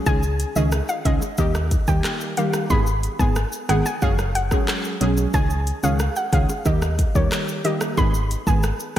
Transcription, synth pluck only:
0, 0, Header, 1, 2, 480
1, 0, Start_track
1, 0, Tempo, 659341
1, 47, Time_signature, 4, 2, 24, 8
1, 6544, End_track
2, 0, Start_track
2, 0, Title_t, "Synth pluck"
2, 0, Program_c, 0, 84
2, 47, Note_on_c, 0, 80, 105
2, 243, Note_off_c, 0, 80, 0
2, 408, Note_on_c, 0, 75, 84
2, 506, Note_off_c, 0, 75, 0
2, 647, Note_on_c, 0, 77, 87
2, 745, Note_off_c, 0, 77, 0
2, 768, Note_on_c, 0, 75, 82
2, 865, Note_off_c, 0, 75, 0
2, 1007, Note_on_c, 0, 75, 84
2, 1105, Note_off_c, 0, 75, 0
2, 1367, Note_on_c, 0, 79, 83
2, 1465, Note_off_c, 0, 79, 0
2, 1728, Note_on_c, 0, 77, 89
2, 1826, Note_off_c, 0, 77, 0
2, 1967, Note_on_c, 0, 83, 100
2, 2163, Note_off_c, 0, 83, 0
2, 2325, Note_on_c, 0, 80, 75
2, 2424, Note_off_c, 0, 80, 0
2, 2687, Note_on_c, 0, 78, 83
2, 2785, Note_off_c, 0, 78, 0
2, 2808, Note_on_c, 0, 80, 80
2, 2906, Note_off_c, 0, 80, 0
2, 2928, Note_on_c, 0, 77, 88
2, 3026, Note_off_c, 0, 77, 0
2, 3168, Note_on_c, 0, 78, 87
2, 3266, Note_off_c, 0, 78, 0
2, 3888, Note_on_c, 0, 80, 106
2, 4084, Note_off_c, 0, 80, 0
2, 4249, Note_on_c, 0, 77, 88
2, 4346, Note_off_c, 0, 77, 0
2, 4488, Note_on_c, 0, 78, 84
2, 4586, Note_off_c, 0, 78, 0
2, 4609, Note_on_c, 0, 77, 81
2, 4706, Note_off_c, 0, 77, 0
2, 4849, Note_on_c, 0, 75, 83
2, 4946, Note_off_c, 0, 75, 0
2, 5208, Note_on_c, 0, 73, 81
2, 5306, Note_off_c, 0, 73, 0
2, 5568, Note_on_c, 0, 75, 83
2, 5666, Note_off_c, 0, 75, 0
2, 5807, Note_on_c, 0, 83, 99
2, 6003, Note_off_c, 0, 83, 0
2, 6167, Note_on_c, 0, 80, 79
2, 6265, Note_off_c, 0, 80, 0
2, 6544, End_track
0, 0, End_of_file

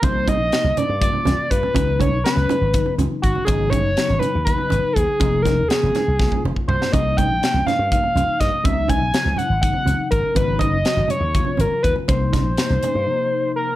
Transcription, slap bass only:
0, 0, Header, 1, 3, 480
1, 0, Start_track
1, 0, Tempo, 491803
1, 33, Time_signature, 7, 3, 24, 8
1, 13427, End_track
2, 0, Start_track
2, 0, Title_t, "Slap bass"
2, 0, Program_c, 0, 36
2, 30, Note_on_c, 0, 36, 88
2, 383, Note_off_c, 0, 36, 0
2, 383, Note_on_c, 0, 34, 74
2, 480, Note_off_c, 0, 34, 0
2, 625, Note_on_c, 0, 36, 65
2, 722, Note_off_c, 0, 36, 0
2, 872, Note_on_c, 0, 43, 71
2, 1059, Note_off_c, 0, 43, 0
2, 1233, Note_on_c, 0, 36, 66
2, 1327, Note_off_c, 0, 36, 0
2, 1476, Note_on_c, 0, 43, 80
2, 1569, Note_off_c, 0, 43, 0
2, 1715, Note_on_c, 0, 37, 84
2, 2073, Note_off_c, 0, 37, 0
2, 2073, Note_on_c, 0, 35, 70
2, 2168, Note_off_c, 0, 35, 0
2, 2312, Note_on_c, 0, 37, 65
2, 2407, Note_off_c, 0, 37, 0
2, 2550, Note_on_c, 0, 32, 71
2, 2739, Note_off_c, 0, 32, 0
2, 2910, Note_on_c, 0, 37, 61
2, 3006, Note_off_c, 0, 37, 0
2, 3158, Note_on_c, 0, 32, 88
2, 3252, Note_off_c, 0, 32, 0
2, 3399, Note_on_c, 0, 32, 89
2, 3750, Note_off_c, 0, 32, 0
2, 3750, Note_on_c, 0, 30, 76
2, 3847, Note_off_c, 0, 30, 0
2, 3998, Note_on_c, 0, 32, 72
2, 4092, Note_off_c, 0, 32, 0
2, 4245, Note_on_c, 0, 39, 76
2, 4429, Note_off_c, 0, 39, 0
2, 4602, Note_on_c, 0, 32, 69
2, 4694, Note_off_c, 0, 32, 0
2, 4847, Note_on_c, 0, 39, 86
2, 4938, Note_off_c, 0, 39, 0
2, 5082, Note_on_c, 0, 29, 83
2, 5455, Note_on_c, 0, 39, 67
2, 5470, Note_off_c, 0, 29, 0
2, 5543, Note_off_c, 0, 39, 0
2, 5692, Note_on_c, 0, 29, 70
2, 5781, Note_off_c, 0, 29, 0
2, 5933, Note_on_c, 0, 36, 73
2, 6114, Note_off_c, 0, 36, 0
2, 6290, Note_on_c, 0, 29, 64
2, 6380, Note_off_c, 0, 29, 0
2, 6519, Note_on_c, 0, 36, 79
2, 6613, Note_off_c, 0, 36, 0
2, 6771, Note_on_c, 0, 36, 76
2, 7121, Note_off_c, 0, 36, 0
2, 7121, Note_on_c, 0, 34, 77
2, 7214, Note_off_c, 0, 34, 0
2, 7358, Note_on_c, 0, 36, 69
2, 7453, Note_off_c, 0, 36, 0
2, 7602, Note_on_c, 0, 43, 72
2, 7788, Note_off_c, 0, 43, 0
2, 7957, Note_on_c, 0, 36, 61
2, 8052, Note_off_c, 0, 36, 0
2, 8205, Note_on_c, 0, 43, 74
2, 8297, Note_off_c, 0, 43, 0
2, 8442, Note_on_c, 0, 37, 86
2, 8789, Note_off_c, 0, 37, 0
2, 8789, Note_on_c, 0, 35, 80
2, 8887, Note_off_c, 0, 35, 0
2, 9031, Note_on_c, 0, 37, 65
2, 9128, Note_off_c, 0, 37, 0
2, 9268, Note_on_c, 0, 32, 78
2, 9458, Note_off_c, 0, 32, 0
2, 9628, Note_on_c, 0, 37, 74
2, 9726, Note_off_c, 0, 37, 0
2, 9874, Note_on_c, 0, 32, 80
2, 9969, Note_off_c, 0, 32, 0
2, 10113, Note_on_c, 0, 32, 82
2, 10464, Note_off_c, 0, 32, 0
2, 10464, Note_on_c, 0, 30, 71
2, 10563, Note_off_c, 0, 30, 0
2, 10701, Note_on_c, 0, 32, 67
2, 10801, Note_off_c, 0, 32, 0
2, 10935, Note_on_c, 0, 39, 76
2, 11130, Note_off_c, 0, 39, 0
2, 11308, Note_on_c, 0, 32, 65
2, 11405, Note_off_c, 0, 32, 0
2, 11557, Note_on_c, 0, 39, 76
2, 11650, Note_off_c, 0, 39, 0
2, 11800, Note_on_c, 0, 36, 87
2, 12151, Note_off_c, 0, 36, 0
2, 12151, Note_on_c, 0, 34, 76
2, 12246, Note_off_c, 0, 34, 0
2, 12395, Note_on_c, 0, 36, 59
2, 12489, Note_off_c, 0, 36, 0
2, 12639, Note_on_c, 0, 43, 69
2, 12731, Note_off_c, 0, 43, 0
2, 13427, End_track
3, 0, Start_track
3, 0, Title_t, "Muted slap bass strokes"
3, 749, Note_on_c, 9, 29, 31
3, 847, Note_off_c, 9, 29, 0
3, 1352, Note_on_c, 9, 29, 29
3, 1450, Note_off_c, 9, 29, 0
3, 1592, Note_on_c, 9, 29, 27
3, 1689, Note_off_c, 9, 29, 0
3, 3033, Note_on_c, 9, 29, 32
3, 3131, Note_off_c, 9, 29, 0
3, 3270, Note_on_c, 9, 29, 28
3, 3367, Note_off_c, 9, 29, 0
3, 4123, Note_on_c, 9, 29, 31
3, 4221, Note_off_c, 9, 29, 0
3, 4970, Note_on_c, 9, 29, 29
3, 5067, Note_off_c, 9, 29, 0
3, 5815, Note_on_c, 9, 29, 31
3, 5913, Note_off_c, 9, 29, 0
3, 6644, Note_on_c, 9, 29, 29
3, 6742, Note_off_c, 9, 29, 0
3, 8315, Note_on_c, 9, 29, 28
3, 8412, Note_off_c, 9, 29, 0
3, 9977, Note_on_c, 9, 29, 26
3, 10074, Note_off_c, 9, 29, 0
3, 11677, Note_on_c, 9, 29, 29
3, 11775, Note_off_c, 9, 29, 0
3, 13427, End_track
0, 0, End_of_file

